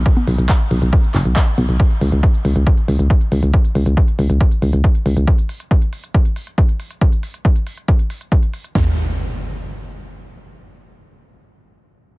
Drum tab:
HH |xxoxxxoxxxoxxxox|xxoxxxoxxxoxxxox|xxoxxxoxxxoxxxox|xxoxxxoxxxoxxxox|
CP |----x-----x-x---|----------------|----------------|----------------|
FT |----------------|----------------|----------------|----------------|
CG |-o------------o-|----------------|----------------|----------------|
BD |o---o---o---o---|o---o---o---o---|o---o---o---o---|o---o---o---o---|

HH |xxoxxxoxxxoxxxox|----------------|----------------|
CP |----------------|----------------|----------------|
FT |----------------|o---------------|----------------|
CG |----------------|----------------|----------------|
BD |o---o---o---o---|o---------------|----------------|